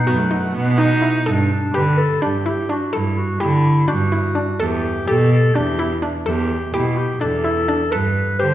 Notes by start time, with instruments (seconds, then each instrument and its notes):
Already playing: woodwind section B2 B3 F#5, clarinet D#4
0.06 cello F#2, viola B3, synth pluck F#4
0.18 viola A3
0.31 synth pluck D#4
0.54 cello B2, viola B3
0.78 synth pluck D#4, viola D#4
1.02 synth pluck E4
1.26 cello G2, clarinet D4, synth pluck A4
1.52 clarinet D4
1.74 cello D3, synth pluck G4, clarinet B4, celesta B5
1.97 clarinet A4
2.22 cello G2, synth pluck D4, clarinet G4
2.46 synth pluck E4, clarinet G4
2.69 synth pluck D4, clarinet F#4
2.93 cello G2, clarinet E4, synth pluck A4
3.18 clarinet F#4
3.40 cello D3, clarinet E4, synth pluck G4
3.88 cello G2, synth pluck D4, clarinet F#4, celesta G6
4.12 synth pluck E4
4.35 synth pluck D4
4.60 cello E2, clarinet G4, synth pluck A4
5.08 cello B2, synth pluck G4, clarinet A4
5.32 clarinet A4
5.55 cello E2, synth pluck D4, clarinet G4
5.79 synth pluck E4
6.02 synth pluck D4
6.25 cello E2, clarinet G4, synth pluck A4
6.74 cello B2, clarinet E4, synth pluck G4
6.97 clarinet G4
7.20 cello E2, synth pluck D4, clarinet A4
7.44 synth pluck E4, celesta E6
7.68 synth pluck D4
7.91 cello G2, synth pluck A4, clarinet B4
8.39 cello D3, synth pluck G4, clarinet C5